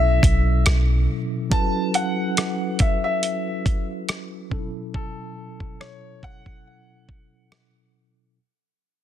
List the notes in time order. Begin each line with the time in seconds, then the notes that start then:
Already playing: B1 B2 F#3 C#4 E4 A4 E5
0.23 B1, kick, closed hi-hat
0.66 B1, cross-stick, closed hi-hat
1.50 F#3 C#4 E4 F#4 A4 B4 A5, kick, closed hi-hat
1.94 F#5, closed hi-hat
2.37 cross-stick, closed hi-hat
2.79 E5, kick, closed hi-hat
3.04 E5
3.23 closed hi-hat
3.66 kick, closed hi-hat
4.09 cross-stick, closed hi-hat
4.50 B2 F#3 C#4 D#4 A4, kick
4.59 E4
4.94 A4, kick
5.60 kick
5.81 C#5, cross-stick
6.23 F#5, kick
6.46 kick
7.09 kick
7.52 cross-stick